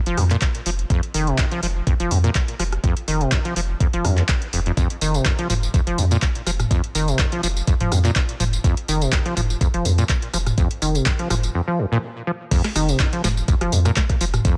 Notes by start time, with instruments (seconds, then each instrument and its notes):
0.06 sub bass F1, acid bass F3, closed hi-hat
0.17 sub bass F2, acid bass F2, cross-stick, open hi-hat
0.30 acid bass A#2, clap, closed hi-hat
0.41 kick, clap, closed hi-hat
0.55 closed hi-hat
0.66 sub bass F1, acid bass F3, open hi-hat
0.79 closed hi-hat
0.90 acid bass F2, kick, closed hi-hat
1.03 closed hi-hat
1.14 sub bass F1, acid bass D#3, open hi-hat
1.27 acid bass C3, closed hi-hat
1.38 acid bass F2, kick, clap, closed hi-hat
1.51 acid bass F3, closed hi-hat
1.63 sub bass F1, acid bass F3, open hi-hat
1.87 acid bass F2, kick, closed hi-hat
2.00 sub bass F1, acid bass F3, closed hi-hat
2.11 sub bass F2, acid bass F2, open hi-hat
2.24 acid bass A#2, closed hi-hat
2.35 kick, clap, closed hi-hat
2.48 closed hi-hat
2.59 sub bass F1, acid bass F3, cross-stick, open hi-hat
2.72 cross-stick, closed hi-hat
2.84 acid bass F2, kick, closed hi-hat
2.97 closed hi-hat
3.08 sub bass F1, acid bass D#3, open hi-hat
3.21 acid bass C3, closed hi-hat
3.32 acid bass F2, kick, clap, closed hi-hat
3.45 acid bass F3, closed hi-hat
3.56 sub bass F1, acid bass F3, open hi-hat
3.80 acid bass F2, kick, closed hi-hat
3.93 sub bass F1, acid bass F3, closed hi-hat
4.05 sub bass F2, acid bass F#2, cross-stick, open hi-hat
4.17 acid bass D#2, clap, closed hi-hat
4.29 kick, clap, closed hi-hat
4.42 closed hi-hat
4.53 sub bass F1, acid bass F2, open hi-hat
4.66 acid bass F2, closed hi-hat
4.77 acid bass F2, kick, closed hi-hat, tambourine
4.90 closed hi-hat
5.01 sub bass F1, acid bass D#3, open hi-hat, tambourine
5.14 acid bass C3, closed hi-hat, tambourine
5.25 acid bass F2, kick, clap, closed hi-hat, tambourine
5.39 acid bass F3, closed hi-hat
5.50 sub bass F1, acid bass F3, mid tom, open hi-hat, tambourine
5.63 tambourine
5.74 acid bass F2, kick, closed hi-hat, tambourine
5.87 sub bass F1, acid bass F3, closed hi-hat
5.98 acid bass F2, sub bass F2, open hi-hat, tambourine
6.11 acid bass A#2, closed hi-hat, tambourine
6.22 kick, clap, closed hi-hat, tambourine
6.35 closed hi-hat
6.47 sub bass F1, acid bass F3, cross-stick, open hi-hat, tambourine
6.60 cross-stick, closed hi-hat, mid tom, tambourine
6.71 acid bass F2, kick, closed hi-hat, tambourine
6.84 closed hi-hat
6.95 sub bass F1, acid bass D#3, open hi-hat, tambourine
7.08 acid bass C3, closed hi-hat, tambourine
7.19 acid bass F2, kick, clap, closed hi-hat, tambourine
7.32 acid bass F3, closed hi-hat
7.43 sub bass F1, acid bass F3, open hi-hat, tambourine
7.57 tambourine
7.67 acid bass F2, kick, closed hi-hat, tambourine
7.80 sub bass F1, acid bass F3, closed hi-hat, mid tom
7.92 sub bass F2, acid bass F2, cross-stick, mid tom, open hi-hat, tambourine
8.04 acid bass A#2, clap, closed hi-hat, tambourine
8.16 kick, clap, closed hi-hat, tambourine
8.29 closed hi-hat
8.40 sub bass F1, acid bass F3, mid tom, open hi-hat, tambourine
8.53 closed hi-hat, tambourine
8.64 acid bass F2, kick, closed hi-hat, tambourine
8.77 closed hi-hat
8.88 sub bass F1, acid bass D#3, open hi-hat, tambourine
9.01 acid bass C3, closed hi-hat, tambourine
9.12 acid bass F2, kick, clap, closed hi-hat, tambourine
9.25 acid bass F3, closed hi-hat
9.37 sub bass F1, acid bass F3, mid tom, open hi-hat, tambourine
9.50 tambourine
9.61 acid bass F2, kick, closed hi-hat, tambourine
9.74 sub bass F1, acid bass F3, closed hi-hat
9.85 acid bass F2, sub bass F2, open hi-hat, tambourine
9.98 acid bass A#2, closed hi-hat, tambourine
10.09 kick, clap, closed hi-hat, tambourine
10.22 closed hi-hat
10.34 sub bass F1, acid bass F3, cross-stick, open hi-hat, tambourine
10.46 cross-stick, closed hi-hat, mid tom, tambourine
10.58 acid bass F2, kick, closed hi-hat, tambourine
10.71 closed hi-hat
10.82 sub bass F1, acid bass D#3, open hi-hat, tambourine
10.95 acid bass C3, closed hi-hat, tambourine
11.06 acid bass F2, kick, clap, closed hi-hat, tambourine
11.19 acid bass F3, closed hi-hat
11.30 sub bass F1, acid bass F3, cross-stick, mid tom, open hi-hat, tambourine
11.43 closed hi-hat, tambourine
11.55 acid bass F2
11.68 acid bass F3
11.79 acid bass F2
11.92 acid bass A#2
12.27 acid bass F3
12.51 acid bass F2, kick, closed hi-hat, crash, tambourine
12.64 cross-stick, snare, closed hi-hat
12.76 sub bass F1, acid bass D#3, cross-stick, open hi-hat, tambourine
12.89 acid bass C3, closed hi-hat, tambourine
13.00 acid bass F2, kick, cross-stick, clap, closed hi-hat, tambourine
13.13 acid bass F3, closed hi-hat
13.24 sub bass F1, acid bass F3, cross-stick, snare, mid tom, open hi-hat, tambourine
13.37 tambourine
13.48 acid bass F2, kick, cross-stick, closed hi-hat, tambourine
13.61 sub bass F1, acid bass F3, cross-stick, closed hi-hat
13.72 sub bass F2, acid bass F2, open hi-hat, tambourine
13.85 acid bass A#2, cross-stick, closed hi-hat, tambourine
13.96 kick, snare, clap, closed hi-hat, tambourine
14.09 kick, cross-stick, closed hi-hat
14.21 sub bass F1, acid bass F3, open hi-hat, tambourine
14.34 cross-stick, closed hi-hat, mid tom, tambourine
14.45 acid bass F2, kick, closed hi-hat, tambourine